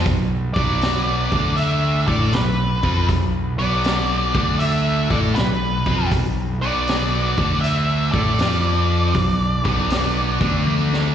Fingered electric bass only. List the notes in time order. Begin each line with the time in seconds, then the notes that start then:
0.06 B1
0.56 B1
1.32 D2
2.07 A2
2.33 B1
2.83 F2
3.09 B1
3.59 B1
4.35 D2
5.10 A2
5.36 B1
5.86 F2
6.11 B1
6.62 B1
7.38 D2
8.13 A2
8.39 F2
9.15 B1
9.65 B1
10.41 D2